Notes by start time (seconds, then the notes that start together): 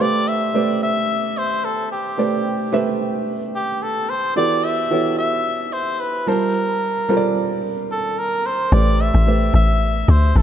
Already playing: F5
0.00 A3 G4 B4 C5 D5
0.28 E5
0.54 A3 G4 B4 C5 D5
0.83 E5
1.38 C5
1.65 A4
1.92 G4
2.18 A3 G4 B4 C5 D5
2.72 A3 G4 B4 C5 E5
3.55 G4
3.82 A4
4.09 C5
4.36 E3 B3 F#4 G4 A4 D5
4.64 E5
4.90 E3 B3 F#4 G4 A4 C#5
5.18 E5
5.73 C5
6.00 B4
6.27 G3 F4 A#4 C5 A5
7.09 G3 F4 A4 A#4 C5
7.17 D5
7.91 A4
8.19 A#4
8.46 C5
8.72 A1 A3 G4 B4 C5 D5
9.01 E5
9.14 A1
9.27 A3 G4 B4 C5 E5
9.54 A1 E5
10.08 D2 C5
10.36 A1 A4